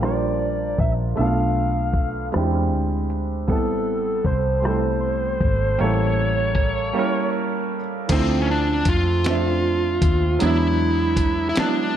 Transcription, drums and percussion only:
0.01 cross-stick, closed hi-hat
0.78 kick, closed hi-hat
1.17 closed hi-hat
1.93 kick, closed hi-hat
2.32 cross-stick, closed hi-hat
3.10 closed hi-hat
3.48 kick, closed hi-hat
4.25 kick, closed hi-hat
4.63 cross-stick, closed hi-hat
5.41 kick, closed hi-hat
5.79 closed hi-hat
6.55 kick, closed hi-hat
8.09 kick, closed hi-hat, crash
8.85 kick, closed hi-hat
9.24 snare, closed hi-hat
10.02 kick, closed hi-hat
10.40 closed hi-hat
11.17 kick, closed hi-hat
11.56 snare, closed hi-hat

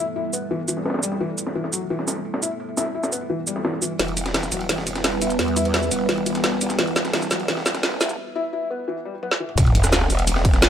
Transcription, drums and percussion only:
0.07 ride
0.16 ride
0.33 ride, shaker
0.51 ride
0.60 ride
0.68 ride, shaker
0.77 snare
0.86 snare, ride
0.90 snare, ride
0.94 snare, ride
0.99 snare, ride
1.03 ride, shaker
1.12 snare
1.20 ride
1.29 ride
1.38 ride, shaker
1.47 snare
1.55 ride
1.64 snare
1.73 ride, shaker
1.82 ride
1.90 ride
1.99 snare
2.08 snare, ride, shaker
2.25 ride
2.34 snare, ride
2.43 shaker
2.51 ride
2.60 ride
2.69 ride
2.77 snare, ride, shaker
2.95 ride
3.03 snare, ride, shaker
3.12 shaker
3.21 ride
3.47 ride, shaker
3.56 snare
3.65 snare, ride
3.73 snare
3.82 ride, shaker
3.91 ride
3.99 snare, closed hi-hat, ride
4.08 ride
4.17 closed hi-hat, ride, shaker
4.26 snare, closed hi-hat
4.34 snare, closed hi-hat, ride
4.43 snare, shaker
4.52 closed hi-hat, ride, shaker
4.61 ride
4.69 snare, closed hi-hat, ride
4.78 snare
4.87 closed hi-hat, ride, shaker
4.95 snare, closed hi-hat
5.04 snare, closed hi-hat, ride
5.22 closed hi-hat, ride, shaker
5.30 closed hi-hat, shaker
5.39 snare, closed hi-hat, ride
5.48 ride
5.57 closed hi-hat, ride, shaker
5.65 closed hi-hat, ride
5.74 snare, closed hi-hat, ride
5.83 shaker
5.91 closed hi-hat, ride, shaker
6.09 snare, closed hi-hat, ride
6.18 ride
6.26 closed hi-hat, ride, shaker
6.35 snare, closed hi-hat
6.44 snare, closed hi-hat, ride
6.61 closed hi-hat, ride, shaker
6.70 snare, closed hi-hat, shaker
6.79 snare, closed hi-hat, ride
6.87 ride
6.96 snare, closed hi-hat, ride, shaker
7.05 snare, closed hi-hat
7.13 snare, closed hi-hat, ride
7.22 snare, shaker
7.31 snare, closed hi-hat, ride, shaker
7.40 ride
7.48 snare, closed hi-hat, ride
7.57 snare
7.66 snare, closed hi-hat, ride, shaker
7.75 snare, closed hi-hat
7.83 snare, closed hi-hat, ride
8.01 snare, closed hi-hat, ride, shaker
8.09 closed hi-hat, shaker
9.23 high tom
9.31 snare
9.40 mid tom
9.49 mid tom
9.58 kick, closed hi-hat, ride, shaker
9.66 ride
9.75 closed hi-hat, ride
9.84 cross-stick, snare, closed hi-hat, shaker
9.93 snare, closed hi-hat, ride, shaker
10.01 cross-stick, snare
10.10 open hi-hat, ride, shaker
10.19 closed hi-hat, ride
10.27 closed hi-hat, ride, shaker
10.36 snare
10.45 kick, closed hi-hat, ride
10.54 snare, closed hi-hat
10.62 snare, closed hi-hat, ride, shaker

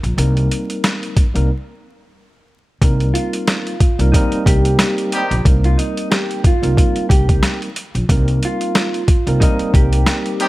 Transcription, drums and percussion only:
0.04 closed hi-hat
0.18 closed hi-hat
0.37 closed hi-hat
0.51 closed hi-hat
0.70 closed hi-hat
0.84 snare, closed hi-hat
1.03 closed hi-hat
1.17 kick, closed hi-hat
1.36 closed hi-hat
2.82 kick, closed hi-hat
3.00 closed hi-hat
3.15 closed hi-hat
3.33 closed hi-hat
3.48 snare, closed hi-hat
3.67 closed hi-hat
3.80 kick, closed hi-hat
3.99 closed hi-hat
4.14 kick, closed hi-hat
4.32 closed hi-hat
4.46 kick, closed hi-hat
4.65 closed hi-hat
4.79 snare, closed hi-hat
4.98 closed hi-hat
5.12 closed hi-hat
5.31 closed hi-hat
5.45 kick, closed hi-hat
5.64 closed hi-hat
5.79 closed hi-hat
5.97 closed hi-hat
6.12 snare, closed hi-hat
6.31 closed hi-hat
6.44 kick, closed hi-hat
6.63 closed hi-hat
6.77 kick, closed hi-hat
6.96 closed hi-hat
7.10 kick, closed hi-hat
7.29 kick, closed hi-hat
7.43 snare, closed hi-hat
7.62 closed hi-hat
7.76 closed hi-hat
7.95 closed hi-hat
8.09 kick, closed hi-hat
8.28 closed hi-hat
8.43 closed hi-hat
8.61 closed hi-hat
8.75 snare, closed hi-hat
8.94 closed hi-hat
9.08 kick, closed hi-hat
9.27 closed hi-hat
9.41 kick, closed hi-hat
9.59 closed hi-hat
9.74 kick, closed hi-hat
9.93 closed hi-hat
10.06 snare, closed hi-hat
10.26 closed hi-hat
10.40 closed hi-hat

